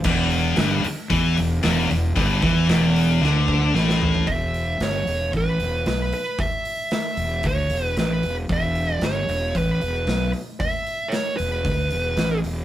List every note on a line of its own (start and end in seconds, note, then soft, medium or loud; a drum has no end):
0.04 0.54 E1 loud
0.04 0.57 E2 loud
0.04 kick loud
0.04 crash loud
0.30 open hi-hat medium
0.56 0.82 G1 loud
0.56 0.84 G2 medium
0.56 snare loud
0.56 open hi-hat medium
0.84 muted fingered electric bass stroke soft
0.84 muted distorted electric guitar stroke medium
0.84 open hi-hat medium
1.10 1.35 E2 medium
1.10 1.36 E3 medium
1.10 kick loud
1.10 open hi-hat medium
1.37 1.62 E1 medium
1.37 1.58 E2 medium
1.37 open hi-hat medium
1.63 1.89 E1 loud
1.63 1.88 E2 medium
1.63 snare loud
1.63 open hi-hat medium
1.90 2.15 E1 medium
1.90 2.11 E2 medium
1.90 open hi-hat medium
2.16 2.41 G1 loud
2.16 2.41 G2 loud
2.16 kick loud
2.16 open hi-hat medium
2.42 2.67 E2 medium
2.42 2.68 E3 loud
2.42 kick loud
2.42 open hi-hat medium
2.67 3.18 E1 loud
2.67 3.20 E2 medium
2.67 snare loud
2.67 open hi-hat medium
2.96 open hi-hat medium
3.21 3.71 D2 loud
3.21 3.74 D3 loud
3.21 snare medium
3.37 high tom medium
3.48 kick medium
3.74 4.24 A1 medium
3.74 4.26 A2 loud
3.74 snare medium
3.89 snare medium
4.02 floor tom loud
4.15 floor tom medium
4.27 4.76 E1 medium
4.27 4.82 E5 medium
4.27 kick medium
4.27 open hi-hat medium
4.54 open hi-hat soft
4.80 5.05 G1 loud
4.80 5.31 C#5 medium
4.80 snare medium
4.80 open hi-hat medium
5.07 5.32 E1 medium
5.07 open hi-hat medium
5.33 5.58 A1 medium
5.33 5.87 B4 medium
5.33 kick medium
5.33 open hi-hat medium
5.60 5.84 E1 medium
5.60 open hi-hat soft
5.86 6.10 B1 medium
5.86 6.13 B4 medium
5.86 snare medium
5.86 open hi-hat medium
6.13 6.40 B4 medium
6.13 open hi-hat medium
6.39 6.92 E5 medium
6.39 kick loud
6.39 open hi-hat medium
6.65 open hi-hat medium
6.91 7.47 E5 medium
6.91 snare loud
6.91 open hi-hat medium
7.17 7.42 E1 medium
7.17 open hi-hat medium
7.43 7.69 D2 medium
7.43 7.95 C#5 medium
7.43 kick medium
7.43 open hi-hat medium
7.70 7.95 E1 medium
7.70 open hi-hat medium
7.97 8.21 A1 medium
7.97 8.35 B4 medium
7.97 snare medium
7.97 open hi-hat medium
8.23 8.48 E1 medium
8.23 open hi-hat soft
8.49 8.98 E1 medium
8.49 8.95 E5 medium
8.49 kick loud
8.49 open hi-hat medium
8.75 open hi-hat soft
8.95 9.05 D5 medium
9.01 9.27 G1 loud
9.01 9.57 C#5 medium
9.01 snare loud
9.01 open hi-hat medium
9.28 9.53 E1 medium
9.28 open hi-hat soft
9.55 9.79 A1 medium
9.55 10.31 B4 medium
9.55 kick medium
9.55 open hi-hat medium
9.81 10.05 E1 medium
9.81 open hi-hat soft
10.07 10.31 B1 loud
10.07 snare medium
10.07 open hi-hat medium
10.33 open hi-hat soft
10.60 11.14 E5 medium
10.60 kick loud
10.60 open hi-hat medium
10.87 open hi-hat soft
11.09 11.37 C#5 medium
11.09 snare loud
11.09 open hi-hat medium
11.37 11.63 E1 medium
11.37 12.38 B4 medium
11.37 open hi-hat medium
11.65 11.89 D2 medium
11.65 kick medium
11.65 open hi-hat medium
11.91 12.16 E1 medium
11.91 open hi-hat medium
12.17 12.41 A1 medium
12.17 snare loud
12.17 open hi-hat medium
12.44 12.65 E1 medium
12.44 open hi-hat medium